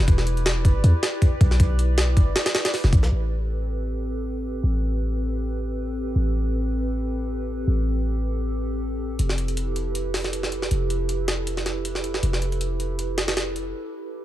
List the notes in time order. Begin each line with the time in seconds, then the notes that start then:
Already playing: E4 B4
0.08 E1 G4 D5, kick, closed hi-hat
0.18 snare
0.27 closed hi-hat
0.37 closed hi-hat
0.46 snare, closed hi-hat
0.65 G1, kick, closed hi-hat
0.84 E2, closed hi-hat
1.03 snare, closed hi-hat
1.22 kick, closed hi-hat
1.41 B1, kick, closed hi-hat
1.51 snare
1.60 kick, closed hi-hat
1.79 closed hi-hat
1.98 snare, closed hi-hat
2.17 G1, kick, closed hi-hat
2.36 snare, closed hi-hat
2.46 snare, closed hi-hat
2.55 snare, closed hi-hat
2.65 snare, closed hi-hat
2.74 snare, open hi-hat
2.84 E1, snare
2.93 A1, kick, closed hi-hat
3.03 B1, snare
3.12 A1 C4 G4 A4 B4
4.63 A1
6.15 A1
7.67 A1
9.19 F1 E4 B4, closed hi-hat
9.29 snare
9.38 closed hi-hat
9.48 closed hi-hat
9.57 closed hi-hat
9.76 closed hi-hat
9.95 closed hi-hat
10.14 snare, open hi-hat
10.24 snare
10.33 closed hi-hat
10.43 snare
10.52 closed hi-hat
10.62 snare
10.71 F1, closed hi-hat
10.90 closed hi-hat
11.09 closed hi-hat
11.28 snare, closed hi-hat
11.47 closed hi-hat
11.57 snare
11.66 snare, closed hi-hat
11.85 closed hi-hat
11.95 snare
12.04 closed hi-hat
12.14 snare
12.23 F1, closed hi-hat
12.33 snare
12.42 closed hi-hat
12.52 closed hi-hat
12.61 closed hi-hat
12.80 closed hi-hat
12.99 closed hi-hat
13.18 snare, closed hi-hat
13.28 snare, closed hi-hat
13.37 snare, closed hi-hat
13.56 closed hi-hat